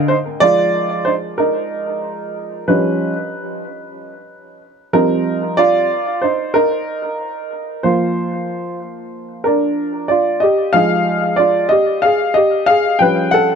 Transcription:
0, 0, Header, 1, 2, 480
1, 0, Start_track
1, 0, Tempo, 645161
1, 72, Time_signature, 4, 2, 24, 8
1, 10083, End_track
2, 0, Start_track
2, 0, Title_t, "Upright piano"
2, 0, Program_c, 0, 0
2, 62, Note_on_c, 0, 72, 94
2, 79, Note_on_c, 0, 63, 65
2, 117, Note_off_c, 0, 72, 0
2, 132, Note_off_c, 0, 63, 0
2, 300, Note_on_c, 0, 74, 120
2, 306, Note_on_c, 0, 53, 51
2, 310, Note_on_c, 0, 56, 51
2, 317, Note_on_c, 0, 63, 63
2, 317, Note_on_c, 0, 65, 80
2, 765, Note_off_c, 0, 65, 0
2, 780, Note_on_c, 0, 72, 93
2, 784, Note_off_c, 0, 63, 0
2, 795, Note_on_c, 0, 63, 71
2, 801, Note_off_c, 0, 74, 0
2, 835, Note_off_c, 0, 72, 0
2, 849, Note_off_c, 0, 63, 0
2, 1025, Note_on_c, 0, 70, 87
2, 1039, Note_on_c, 0, 63, 70
2, 1960, Note_off_c, 0, 53, 0
2, 1961, Note_off_c, 0, 56, 0
2, 1966, Note_off_c, 0, 63, 0
2, 1992, Note_on_c, 0, 53, 51
2, 1992, Note_on_c, 0, 71, 75
2, 1997, Note_on_c, 0, 55, 50
2, 2000, Note_on_c, 0, 61, 58
2, 2003, Note_on_c, 0, 63, 63
2, 2017, Note_off_c, 0, 70, 0
2, 2324, Note_off_c, 0, 53, 0
2, 2327, Note_off_c, 0, 55, 0
2, 2328, Note_off_c, 0, 61, 0
2, 2682, Note_off_c, 0, 71, 0
2, 2688, Note_off_c, 0, 63, 0
2, 3669, Note_on_c, 0, 53, 52
2, 3670, Note_on_c, 0, 70, 95
2, 3674, Note_on_c, 0, 55, 48
2, 3676, Note_on_c, 0, 60, 60
2, 3678, Note_on_c, 0, 63, 71
2, 4125, Note_off_c, 0, 63, 0
2, 4145, Note_on_c, 0, 74, 104
2, 4157, Note_on_c, 0, 65, 86
2, 4166, Note_off_c, 0, 70, 0
2, 4361, Note_off_c, 0, 53, 0
2, 4363, Note_off_c, 0, 55, 0
2, 4364, Note_off_c, 0, 60, 0
2, 4605, Note_off_c, 0, 65, 0
2, 4624, Note_on_c, 0, 72, 82
2, 4640, Note_on_c, 0, 63, 65
2, 4643, Note_off_c, 0, 74, 0
2, 4860, Note_off_c, 0, 63, 0
2, 4865, Note_on_c, 0, 70, 98
2, 4876, Note_off_c, 0, 72, 0
2, 4879, Note_on_c, 0, 63, 71
2, 5806, Note_off_c, 0, 63, 0
2, 5828, Note_on_c, 0, 72, 77
2, 5833, Note_on_c, 0, 53, 50
2, 5837, Note_on_c, 0, 58, 47
2, 5842, Note_on_c, 0, 65, 61
2, 5857, Note_off_c, 0, 70, 0
2, 6520, Note_off_c, 0, 72, 0
2, 6529, Note_off_c, 0, 65, 0
2, 7023, Note_on_c, 0, 70, 74
2, 7041, Note_on_c, 0, 62, 65
2, 7478, Note_off_c, 0, 70, 0
2, 7487, Note_off_c, 0, 62, 0
2, 7501, Note_on_c, 0, 74, 76
2, 7522, Note_on_c, 0, 65, 64
2, 7723, Note_off_c, 0, 53, 0
2, 7725, Note_off_c, 0, 58, 0
2, 7739, Note_on_c, 0, 75, 87
2, 7741, Note_off_c, 0, 65, 0
2, 7754, Note_off_c, 0, 74, 0
2, 7761, Note_on_c, 0, 67, 72
2, 7980, Note_off_c, 0, 67, 0
2, 7980, Note_on_c, 0, 77, 100
2, 7989, Note_on_c, 0, 53, 57
2, 7993, Note_off_c, 0, 75, 0
2, 7993, Note_on_c, 0, 56, 50
2, 7999, Note_on_c, 0, 63, 67
2, 8000, Note_on_c, 0, 68, 73
2, 8447, Note_off_c, 0, 68, 0
2, 8455, Note_on_c, 0, 74, 88
2, 8478, Note_on_c, 0, 65, 62
2, 8481, Note_off_c, 0, 77, 0
2, 8681, Note_off_c, 0, 53, 0
2, 8683, Note_off_c, 0, 56, 0
2, 8686, Note_off_c, 0, 63, 0
2, 8696, Note_on_c, 0, 75, 97
2, 8698, Note_off_c, 0, 65, 0
2, 8711, Note_off_c, 0, 74, 0
2, 8718, Note_on_c, 0, 67, 68
2, 8939, Note_off_c, 0, 67, 0
2, 8943, Note_on_c, 0, 77, 91
2, 8952, Note_off_c, 0, 75, 0
2, 8964, Note_on_c, 0, 68, 73
2, 9181, Note_off_c, 0, 68, 0
2, 9182, Note_on_c, 0, 75, 101
2, 9195, Note_off_c, 0, 77, 0
2, 9203, Note_on_c, 0, 67, 69
2, 9421, Note_off_c, 0, 67, 0
2, 9422, Note_on_c, 0, 77, 103
2, 9434, Note_off_c, 0, 75, 0
2, 9444, Note_on_c, 0, 68, 76
2, 9662, Note_off_c, 0, 68, 0
2, 9664, Note_on_c, 0, 79, 93
2, 9673, Note_on_c, 0, 53, 48
2, 9674, Note_off_c, 0, 77, 0
2, 9680, Note_on_c, 0, 55, 46
2, 9683, Note_on_c, 0, 61, 54
2, 9685, Note_on_c, 0, 71, 82
2, 9902, Note_off_c, 0, 71, 0
2, 9904, Note_on_c, 0, 78, 105
2, 9915, Note_off_c, 0, 79, 0
2, 9924, Note_on_c, 0, 69, 76
2, 10083, Note_off_c, 0, 53, 0
2, 10083, Note_off_c, 0, 55, 0
2, 10083, Note_off_c, 0, 61, 0
2, 10083, Note_off_c, 0, 69, 0
2, 10083, Note_off_c, 0, 78, 0
2, 10083, End_track
0, 0, End_of_file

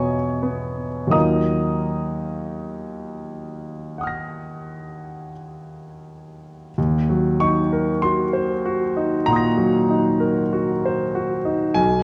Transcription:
0, 0, Header, 1, 2, 480
1, 0, Start_track
1, 0, Key_signature, -6, "minor"
1, 0, Tempo, 1428571
1, 383, Time_signature, 4, 2, 24, 8
1, 868, Tempo, 1395349
1, 2308, Tempo, 1250000
1, 4328, End_track
2, 0, Start_track
2, 0, Title_t, "Grand piano"
2, 0, Program_c, 0, 0
2, 0, Control_c, 0, 64, 127
2, 0, Note_on_c, 0, 40, 35
2, 0, Note_on_c, 0, 47, 36
2, 0, Note_on_c, 0, 59, 31
2, 0, Note_on_c, 0, 73, 49
2, 0, Note_on_c, 0, 75, 53
2, 0, Note_on_c, 0, 80, 52
2, 0, Note_on_c, 0, 82, 55
2, 0, Note_on_c, 0, 85, 64
2, 0, Note_on_c, 0, 87, 70
2, 49, Note_off_c, 0, 59, 0
2, 141, Note_on_c, 0, 59, 33
2, 286, Note_off_c, 0, 47, 0
2, 360, Note_on_c, 0, 39, 39
2, 362, Note_on_c, 0, 54, 29
2, 367, Note_off_c, 0, 40, 0
2, 368, Note_on_c, 0, 63, 29
2, 369, Note_off_c, 0, 80, 0
2, 371, Note_off_c, 0, 73, 0
2, 371, Note_on_c, 0, 65, 26
2, 372, Note_on_c, 0, 70, 30
2, 374, Note_off_c, 0, 87, 0
2, 374, Note_on_c, 0, 87, 56
2, 376, Note_off_c, 0, 82, 0
2, 376, Note_on_c, 0, 82, 44
2, 378, Note_off_c, 0, 75, 0
2, 378, Note_on_c, 0, 75, 45
2, 381, Note_off_c, 0, 85, 0
2, 383, Note_off_c, 0, 59, 0
2, 390, Control_c, 0, 64, 0
2, 466, Control_c, 0, 64, 127
2, 1349, Note_on_c, 0, 78, 27
2, 1353, Note_off_c, 0, 87, 0
2, 1358, Note_on_c, 0, 87, 25
2, 1367, Note_on_c, 0, 89, 27
2, 1379, Note_on_c, 0, 94, 26
2, 1811, Note_off_c, 0, 75, 0
2, 1811, Note_off_c, 0, 82, 0
2, 2283, Note_off_c, 0, 39, 0
2, 2283, Note_off_c, 0, 54, 0
2, 2287, Note_off_c, 0, 63, 0
2, 2288, Note_off_c, 0, 65, 0
2, 2289, Note_off_c, 0, 70, 0
2, 2294, Note_off_c, 0, 78, 0
2, 2299, Note_off_c, 0, 87, 0
2, 2303, Note_off_c, 0, 89, 0
2, 2309, Note_off_c, 0, 94, 0
2, 2312, Note_on_c, 0, 39, 48
2, 2315, Control_c, 0, 64, 0
2, 2382, Control_c, 0, 64, 127
2, 2432, Note_on_c, 0, 54, 38
2, 2550, Note_on_c, 0, 85, 80
2, 2552, Note_on_c, 0, 63, 41
2, 2626, Note_off_c, 0, 54, 0
2, 2674, Note_on_c, 0, 70, 42
2, 2745, Note_off_c, 0, 63, 0
2, 2788, Note_on_c, 0, 84, 69
2, 2791, Note_off_c, 0, 85, 0
2, 2793, Note_on_c, 0, 66, 42
2, 2864, Note_off_c, 0, 70, 0
2, 2908, Note_on_c, 0, 72, 46
2, 2983, Note_off_c, 0, 66, 0
2, 3032, Note_on_c, 0, 66, 48
2, 3099, Note_off_c, 0, 72, 0
2, 3152, Note_on_c, 0, 63, 46
2, 3221, Note_off_c, 0, 66, 0
2, 3255, Note_off_c, 0, 39, 0
2, 3265, Note_on_c, 0, 82, 84
2, 3266, Note_off_c, 0, 84, 0
2, 3267, Note_on_c, 0, 78, 34
2, 3270, Note_on_c, 0, 46, 41
2, 3281, Note_on_c, 0, 84, 33
2, 3290, Note_on_c, 0, 87, 33
2, 3304, Note_on_c, 0, 94, 36
2, 3342, Note_off_c, 0, 63, 0
2, 3386, Note_on_c, 0, 54, 41
2, 3462, Note_off_c, 0, 46, 0
2, 3511, Note_on_c, 0, 63, 40
2, 3582, Note_off_c, 0, 54, 0
2, 3626, Note_on_c, 0, 70, 41
2, 3706, Note_off_c, 0, 63, 0
2, 3751, Note_on_c, 0, 66, 44
2, 3826, Note_off_c, 0, 70, 0
2, 3877, Note_on_c, 0, 72, 45
2, 3948, Note_off_c, 0, 66, 0
2, 3990, Note_on_c, 0, 66, 46
2, 4068, Note_off_c, 0, 72, 0
2, 4106, Note_on_c, 0, 63, 42
2, 4182, Note_off_c, 0, 66, 0
2, 4215, Note_off_c, 0, 78, 0
2, 4219, Note_on_c, 0, 80, 83
2, 4223, Note_off_c, 0, 84, 0
2, 4223, Note_on_c, 0, 35, 48
2, 4227, Note_off_c, 0, 63, 0
2, 4227, Note_off_c, 0, 87, 0
2, 4230, Note_off_c, 0, 82, 0
2, 4234, Note_off_c, 0, 94, 0
2, 4239, Control_c, 0, 64, 0
2, 4306, Control_c, 0, 64, 127
2, 4328, Note_off_c, 0, 35, 0
2, 4328, Note_off_c, 0, 80, 0
2, 4328, End_track
0, 0, End_of_file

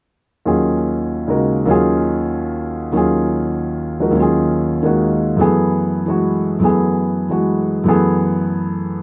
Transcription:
0, 0, Header, 1, 2, 480
1, 0, Start_track
1, 0, Tempo, 412088
1, 514, Time_signature, 3, 2, 24, 8
1, 10510, End_track
2, 0, Start_track
2, 0, Title_t, "Grand piano"
2, 0, Program_c, 0, 0
2, 530, Note_on_c, 0, 39, 41
2, 531, Note_on_c, 0, 61, 38
2, 539, Note_on_c, 0, 51, 37
2, 540, Note_on_c, 0, 54, 36
2, 540, Note_on_c, 0, 65, 38
2, 553, Note_on_c, 0, 68, 47
2, 1484, Note_on_c, 0, 49, 32
2, 1489, Note_on_c, 0, 56, 31
2, 1493, Note_on_c, 0, 63, 29
2, 1511, Note_on_c, 0, 66, 29
2, 1518, Note_on_c, 0, 70, 36
2, 1911, Note_off_c, 0, 39, 0
2, 1927, Note_off_c, 0, 51, 0
2, 1928, Note_on_c, 0, 39, 47
2, 1936, Note_off_c, 0, 54, 0
2, 1945, Note_on_c, 0, 51, 45
2, 1947, Note_off_c, 0, 61, 0
2, 1954, Note_on_c, 0, 54, 44
2, 1959, Note_off_c, 0, 65, 0
2, 1960, Note_off_c, 0, 49, 0
2, 1962, Note_off_c, 0, 56, 0
2, 1965, Note_off_c, 0, 63, 0
2, 1965, Note_on_c, 0, 61, 44
2, 1973, Note_off_c, 0, 68, 0
2, 1974, Note_off_c, 0, 66, 0
2, 1977, Note_off_c, 0, 70, 0
2, 1977, Note_on_c, 0, 65, 43
2, 1991, Note_on_c, 0, 68, 53
2, 3383, Note_off_c, 0, 39, 0
2, 3392, Note_off_c, 0, 51, 0
2, 3396, Note_off_c, 0, 54, 0
2, 3402, Note_off_c, 0, 61, 0
2, 3403, Note_on_c, 0, 39, 41
2, 3408, Note_off_c, 0, 65, 0
2, 3414, Note_off_c, 0, 68, 0
2, 3417, Note_on_c, 0, 51, 39
2, 3426, Note_on_c, 0, 54, 38
2, 3430, Note_on_c, 0, 61, 36
2, 3447, Note_on_c, 0, 65, 39
2, 3464, Note_on_c, 0, 68, 45
2, 4654, Note_on_c, 0, 53, 36
2, 4663, Note_on_c, 0, 56, 32
2, 4671, Note_on_c, 0, 63, 33
2, 4672, Note_on_c, 0, 66, 32
2, 4686, Note_on_c, 0, 70, 38
2, 4768, Note_off_c, 0, 39, 0
2, 4785, Note_on_c, 0, 39, 45
2, 4789, Note_off_c, 0, 51, 0
2, 4806, Note_on_c, 0, 51, 41
2, 4817, Note_off_c, 0, 54, 0
2, 4831, Note_off_c, 0, 53, 0
2, 4835, Note_on_c, 0, 54, 39
2, 4836, Note_off_c, 0, 56, 0
2, 4839, Note_off_c, 0, 63, 0
2, 4840, Note_off_c, 0, 66, 0
2, 4842, Note_off_c, 0, 61, 0
2, 4847, Note_off_c, 0, 70, 0
2, 4859, Note_on_c, 0, 61, 39
2, 4863, Note_off_c, 0, 65, 0
2, 4871, Note_off_c, 0, 68, 0
2, 4882, Note_on_c, 0, 65, 41
2, 4917, Note_on_c, 0, 68, 46
2, 5605, Note_off_c, 0, 51, 0
2, 5622, Note_on_c, 0, 51, 33
2, 5637, Note_on_c, 0, 56, 31
2, 5641, Note_on_c, 0, 58, 34
2, 5650, Note_on_c, 0, 63, 34
2, 5659, Note_on_c, 0, 66, 36
2, 6250, Note_on_c, 0, 42, 45
2, 6252, Note_off_c, 0, 39, 0
2, 6266, Note_on_c, 0, 52, 41
2, 6270, Note_off_c, 0, 51, 0
2, 6276, Note_off_c, 0, 54, 0
2, 6277, Note_off_c, 0, 56, 0
2, 6279, Note_on_c, 0, 57, 42
2, 6280, Note_off_c, 0, 58, 0
2, 6284, Note_off_c, 0, 63, 0
2, 6286, Note_off_c, 0, 68, 0
2, 6289, Note_off_c, 0, 61, 0
2, 6289, Note_off_c, 0, 66, 0
2, 6297, Note_on_c, 0, 59, 42
2, 6300, Note_off_c, 0, 65, 0
2, 6303, Note_on_c, 0, 68, 50
2, 7042, Note_off_c, 0, 52, 0
2, 7060, Note_on_c, 0, 52, 36
2, 7083, Note_on_c, 0, 56, 32
2, 7099, Note_on_c, 0, 66, 38
2, 7664, Note_off_c, 0, 42, 0
2, 7682, Note_on_c, 0, 42, 39
2, 7691, Note_off_c, 0, 52, 0
2, 7696, Note_off_c, 0, 57, 0
2, 7708, Note_on_c, 0, 52, 37
2, 7713, Note_on_c, 0, 57, 37
2, 7714, Note_off_c, 0, 59, 0
2, 7720, Note_off_c, 0, 56, 0
2, 7727, Note_off_c, 0, 68, 0
2, 7728, Note_off_c, 0, 66, 0
2, 7731, Note_on_c, 0, 59, 38
2, 7745, Note_on_c, 0, 68, 48
2, 8475, Note_off_c, 0, 52, 0
2, 8493, Note_on_c, 0, 52, 37
2, 8510, Note_on_c, 0, 56, 33
2, 8518, Note_on_c, 0, 66, 41
2, 9114, Note_off_c, 0, 42, 0
2, 9131, Note_on_c, 0, 42, 49
2, 9135, Note_off_c, 0, 52, 0
2, 9151, Note_off_c, 0, 57, 0
2, 9152, Note_on_c, 0, 52, 44
2, 9158, Note_off_c, 0, 56, 0
2, 9162, Note_off_c, 0, 66, 0
2, 9163, Note_off_c, 0, 59, 0
2, 9168, Note_on_c, 0, 57, 48
2, 9170, Note_off_c, 0, 68, 0
2, 9185, Note_on_c, 0, 59, 49
2, 9192, Note_on_c, 0, 68, 55
2, 10510, Note_off_c, 0, 42, 0
2, 10510, Note_off_c, 0, 52, 0
2, 10510, Note_off_c, 0, 57, 0
2, 10510, Note_off_c, 0, 59, 0
2, 10510, Note_off_c, 0, 68, 0
2, 10510, End_track
0, 0, End_of_file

